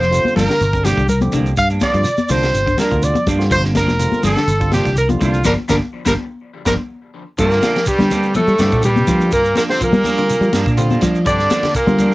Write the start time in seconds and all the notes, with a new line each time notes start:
Already playing: C5
0.00 F1 F3, snare, shekere
0.11 D3 G3 C4 F4, closed hi-hat, shekere
0.24 muted fingered electric bass stroke, high conga, shekere
0.36 G1 F3 A#3 D4 A#4, snare, open hi-hat, low conga, shekere
0.49 D3, snare, shekere
0.61 G1, closed hi-hat, shekere
0.73 D3 G3 C4 D4, kick, closed hi-hat, shekere
0.84 C3 F3 A#3 D4 G4, snare, closed hi-hat, high conga, low conga, shekere
0.97 C2 D3, kick, closed hi-hat, shekere
1.09 A#4, closed hi-hat, low conga, shekere
1.21 D3 F3 G3 C4 G4, closed hi-hat, high conga, shekere
1.32 C2 D3 F3 A#3 D4, kick, closed hi-hat, low conga, shekere
1.46 closed hi-hat, shekere
1.57 G2 F5, kick, closed hi-hat, shekere
1.70 A#3 D4, closed hi-hat, shekere
1.81 D3 F3 G3 A#3 C4 D4 F4 D5, kick, snare, closed hi-hat, high conga, shekere
1.94 G2 F3, closed hi-hat, shekere
2.04 closed hi-hat, shekere
2.17 muted fingered electric bass stroke, closed hi-hat, high conga, shekere
2.29 C2 D3 F3 G3 A#3 C4 D4 F4 C5, open hi-hat, low conga, shekere
2.42 snare, shekere
2.54 G1, closed hi-hat, shekere
2.66 D3, kick, shekere
2.78 F3 A#3 D4 A#4, snare, closed hi-hat, high conga, low conga, shekere
2.91 D2 D3 G3 C4 F4, kick, shekere
3.03 D5, closed hi-hat, shekere
3.15 F3, closed hi-hat, high conga, shekere
3.27 G2 F3 A#3 D4, kick, closed hi-hat, low conga, shekere
3.39 D3 G3 C4 F4, snare, shekere
3.51 G1 F3 C5, kick, closed hi-hat, shekere
3.64 A#3 D4, snare, closed hi-hat, shekere
3.75 F3 A#3 D4 A#4, kick, snare, closed hi-hat, high conga, shekere
3.88 F1 F3, snare, high conga, shekere
3.99 D3 G3 C4 F4, closed hi-hat, shekere
4.12 muted fingered electric bass stroke, high conga, shekere
4.23 G1 F3 A#3 D4 A4, open hi-hat, low conga, shekere
4.36 D3, snare, shekere
4.48 G1, closed hi-hat, shekere
4.60 D3 G3 C4 F4, kick, closed hi-hat, shekere
4.72 C3 F3 A#3 D4 G4, snare, closed hi-hat, high conga, shekere
4.85 C2 D3, kick, snare, closed hi-hat, shekere
4.96 A#4, closed hi-hat, shekere
5.09 D3 F3 G3 C4 F4, closed hi-hat, high conga, shekere
5.21 C2 D3 F3 A#3 D4 F4, kick, closed hi-hat, low conga, shekere
5.34 closed hi-hat, shekere
5.44 G1 D3 F3 G3 A#3 D4 A#4, kick, snare, high conga, shekere
5.68 G1 D3 F3 G3 A#3 D4 A#4, kick, snare, high conga, shekere
6.05 G1 D3 F3 G3 A#3 D4 A#4, kick, snare, high conga, shekere
6.65 G1 D3 F3 G3 A#3 D4 A#4, kick, snare, high conga, shekere
7.38 G2 A#2 D3 F3 G3 A#3 C4 D4 F4 A#4, kick, crash, shekere
7.51 snare, shekere
7.62 F3 A#3 D4, snare, ride bell, high conga, shekere
7.75 F3, snare, ride bell, shekere
7.86 G2 G3 G4, kick, ride bell, shekere
7.98 D3 G3 C4 G4, snare, high conga, shekere
8.11 A#3 D4, ride bell, low conga, shekere
8.23 shekere
8.34 A2 F3 A3 A4, ride bell, high conga, shekere
8.48 G3, shekere
8.59 G2 D3 F3 G3 A#3 C4 D4 G4, snare, ride bell, high conga, low conga, shekere
8.72 A#2, kick, shekere
8.83 G2 G3 G4, ride bell, low conga, shekere
8.96 C3, high conga, shekere
9.07 D3 F3 G3 A#3 C4 D4 F4, muted clean electric guitar stroke, kick, ride bell, low conga, shekere
9.21 shekere
9.32 G2 A#2 A#3 A#4, kick, ride bell, shekere
9.45 shekere
9.56 A#2 F3 A#3 D4 A#4, snare, ride bell, high conga, shekere
9.69 C3 D3 G3 C4 F4 C5, snare, shekere
9.81 A#2 F3 A#3 A#4, kick, ride bell, shekere
9.93 G3, high conga, shekere
10.04 F3 A#3 D4, ride bell, low conga, shekere
10.17 D3 G3 C4 F4, ride bell, shekere
10.30 ride bell, shekere
10.41 F3 G3, shekere
10.53 G2 F3 A#3 D4, snare, ride bell, high conga, shekere
10.66 A#2 A#3 D4, kick, shekere
10.77 D3 G3 C4 F4 F5, ride bell, shekere
10.91 A#3 D4, high conga, shekere
11.01 F3 A#3 D4 D5, kick, snare, ride bell, low conga, shekere
11.15 shekere
11.25 G2 D3 F3 G3 C4 D4 D5, kick, ride bell, shekere
11.39 snare, shekere
11.50 F3 A#3 D4, snare, ride bell, high conga, shekere
11.63 D3, snare, ride bell, high conga, shekere
11.74 A#2 A#3 A#4, kick, ride bell, shekere
11.87 D3 G3 C4 F4, high conga, shekere
11.98 F3 A#3 D4, ride bell, low conga, shekere